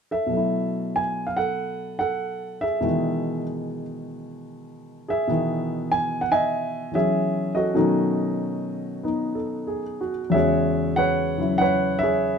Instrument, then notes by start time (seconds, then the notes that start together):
grand piano
0.11 A4 E5
0.27 B2 F#3
0.33 A3 E4
0.96 G#5
1.27 F5
1.37 A4 F#5
1.99 A4 F#5
2.61 G#4 E5
2.81 B2 D#3 E3 G#3
5.08 G#4 E5
5.28 B2 D#3 E3 B3
5.92 G#5
6.21 F#5
6.32 D#5 E5 G#5
6.92 E3 F#3 C#4 G#4 E5
7.55 F#4 A4 D#5
7.75 B2 D#3 F#3 A3 C#4 D#4
9.03 B3 D#4
9.35 A4
9.67 G#4
10.01 F#4
10.30 E2 C#3 G#3 G#4 E5
10.34 F#4 C#5
10.96 B4 C#5 F#5
11.38 C#3 F#3 E4
11.58 B4 C#5 F#5
11.99 E5
12.03 G#4 C#5